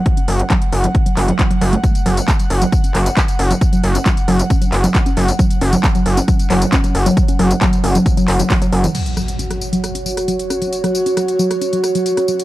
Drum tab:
CC |----------------|----------------|----------------|----------------|
HH |xxoxxxoxxxoxxxox|xxoxxxoxxxoxxxox|xxoxxxoxxxoxxxox|xxoxxxoxxxoxxxox|
TB |----------------|xx-xxx-xxx-xxx-x|xx-xxx-xxx-xxx-x|xx-xxx-xxx-xxx-x|
CP |----x-----x-x---|----x-----x-x---|----x-----x-x---|----x-----x-x---|
SD |----------------|----------------|----------------|----------------|
BD |o---o---o---o---|o---o---o---o---|o---o---o---o---|o---o---o---o---|

CC |----------------|x---------------|----------------|
HH |xxoxxxoxxxoxoxox|xx-xxx-xxx-xxx-x|xx-xxx-xxx-xxx-x|
TB |xx-xxx-xxx-xxx-x|xxxxxxxxxxxxxxxx|xxxxxxxxxxxxxxxx|
CP |----x-----x-x---|----------------|----------------|
SD |----------------|--r--r--r--r--r-|-r--r--r--r--r--|
BD |o---o---o---o---|----------------|----------------|